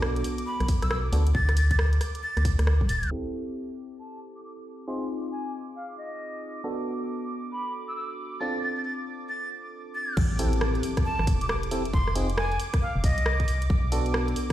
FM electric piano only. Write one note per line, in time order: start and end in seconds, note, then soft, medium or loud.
0.00 1.11 B3 medium
0.00 1.11 D4 medium
0.00 1.11 F#4 medium
0.00 1.11 A4 medium
1.13 1.24 B3 medium
1.13 1.24 D4 medium
1.13 1.24 F#4 medium
1.13 1.24 A4 medium
3.11 4.86 C4 medium
3.11 4.86 E4 medium
3.11 4.86 G4 medium
3.11 4.86 A4 medium
4.88 6.62 C4 medium
4.88 6.62 D#4 medium
4.88 6.62 F4 medium
4.88 6.62 G#4 medium
6.64 8.39 B3 medium
6.64 8.39 D4 medium
6.64 8.39 F#4 medium
6.64 8.39 A4 medium
8.41 10.15 C4 medium
8.41 10.15 D4 medium
8.41 10.15 F4 medium
8.41 10.15 A4 medium
10.39 11.69 C4 medium
10.39 11.69 E4 medium
10.39 11.69 G4 medium
10.39 11.69 A4 medium
11.71 11.83 C4 medium
11.71 11.83 E4 medium
11.71 11.83 G4 medium
11.71 11.83 A4 medium
12.16 12.27 C4 medium
12.16 12.27 D#4 medium
12.16 12.27 F4 medium
12.16 12.27 G#4 medium
13.92 14.53 B3 medium
13.92 14.53 D4 medium
13.92 14.53 F#4 medium
13.92 14.53 A4 medium